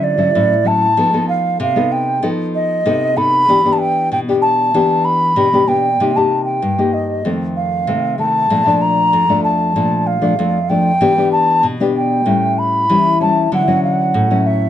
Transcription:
Already playing: D3 F#3 C#4 E4
0.04 D5
0.18 F#3 C#4 E4
0.35 A2 F#3 C#4 E4
0.64 F#3 C#4 E4 A5
0.97 F3 B3 D#4 A4
1.13 B3 D#4 A4
1.29 F5
1.60 C3 F5
1.76 B3 D#4 A4
1.92 G5
2.23 F3 B3 D#4 A4
2.55 D#5
2.86 C3 B3 D#4 A4
3.16 B3 D#4 A4 B5
3.48 E3 B3 D4 G4
3.65 B3 D4 G4
3.73 A5
3.79 G5
4.12 B2 G5
4.28 B3 D4 G4
4.42 A5
4.74 E3 B3 D4 G4
5.05 B5
5.36 B2 B3 D4 G4
5.53 B3 D4 G4
5.67 B3 D4 G4 G5
6.00 C3 A#3 D#4 G4
6.16 A#3 D#4 G4 A5
6.45 G5
6.62 G2
6.78 A#3 D#4 G4
6.93 D#5
7.25 F2 D#3 A3 C4
7.56 F5
7.87 C3 D#3 A3 C4
8.18 D#3 A3 C4 A5
8.50 A#2 F3 A3 D4
8.66 F3 A3 D4
8.82 A#5
9.13 F2
9.29 F3 A3 D4
9.44 A5
9.76 A#2 F3 A3 D4
10.07 F5
10.21 F3 A3 D4
10.39 F2 F3 A3 D4
10.69 F3 A3 D4 G5
11.01 E3 B3 D4 G4
11.17 B3 D4 G4
11.32 A5
11.63 B2
11.80 B3 D4 G4
11.96 G5
12.26 A2 G3 C#4 E4
12.59 B5
12.89 E3 G3 C#4 E4
13.20 G3 C#4 E4 A5
13.52 D3 F#3 C#4 E4 F#5
13.68 F#3 C#4 E4
13.84 F#5
14.14 A2
14.30 F#3 C#4 E4
14.46 E5

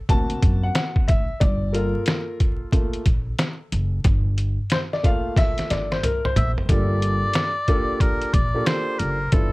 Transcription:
0.09 D2 A#3 C4 F#4 A5, kick, closed hi-hat
0.30 closed hi-hat
0.42 F#2, kick, closed hi-hat
0.63 F#5
0.75 snare, closed hi-hat
0.96 kick
1.08 D2 E5, kick, closed hi-hat
1.40 G1 D5, kick, closed hi-hat
1.73 A#3 F4 A4 A#4, closed hi-hat
2.06 snare, closed hi-hat
2.40 kick, closed hi-hat
2.72 A3 A#3 F4, kick, closed hi-hat
2.93 closed hi-hat
3.06 A#1, kick, closed hi-hat
3.38 snare, closed hi-hat
3.72 F#1, closed hi-hat
4.04 G1, kick, closed hi-hat
4.38 closed hi-hat
4.70 C5, snare, closed hi-hat
4.93 D5, snare
5.03 A3 A#3 F4 F5, kick, closed hi-hat
5.36 E5, kick, snare, closed hi-hat
5.58 snare, closed hi-hat
5.70 G1 D5, snare, closed hi-hat
5.92 C5, snare
6.03 A#4, closed hi-hat, mid tom
6.25 C5, mid tom
6.36 A#1 E5, closed hi-hat, floor tom
6.58 floor tom
6.69 G1 A#3 D4 F4 G4 A4 D5, kick, closed hi-hat
7.02 closed hi-hat
7.33 snare, closed hi-hat
7.68 A#3 D4 F4 G4 A4, kick, closed hi-hat
8.00 A#4, kick, closed hi-hat
8.22 closed hi-hat
8.34 A#1 D5, kick, closed hi-hat
8.54 A#3 D4 F4 G4 A4
8.66 C5, snare, closed hi-hat
8.99 F#1 A#4, closed hi-hat
9.32 G1 B3 D4 E4 F4 A4, kick, closed hi-hat

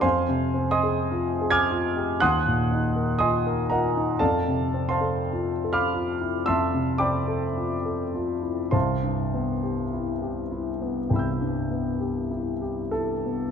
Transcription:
0.01 F2 C5 F5 G#5 C6
0.29 C3
0.54 C4
0.71 D#5 G#5 C6 D#6
0.83 G#4
1.11 F4
1.41 G#4
1.50 G#5 D6 F6 G#6
1.70 F4
1.96 G4
2.20 D#2 F#5 C6 D#6 F#6
2.47 A#2
2.71 D#4
2.96 A#4
3.19 F4 D#5 G#5 C6 D#6
3.46 A#4
3.70 F4 A#4 D#5 F#5 A#5
3.96 D#4
4.19 F2 A4 D5 F5 A5
4.48 C3
4.74 C4
4.89 C5 F5 A5 C6
5.01 A4
5.33 F4
5.64 A4
5.73 F5 B5 D6 F6
5.93 F4
6.21 E4
6.46 F2 E5 A5 C6 E6
6.74 C3
6.98 C4 D5 G5 B5 D6
7.28 A4
7.57 F4
7.85 A4
8.14 F4
8.42 E4
8.71 C2 C5 F5 A5 C6
9.03 G2
9.34 B3
9.63 G4
9.94 E4
10.22 G4
10.52 E4
10.82 B3
11.10 C2 G5 B5
11.16 E6 G6
11.41 G2
11.71 B3
12.00 G4
12.31 E4
12.62 G4
12.91 E4 A4
13.26 B3

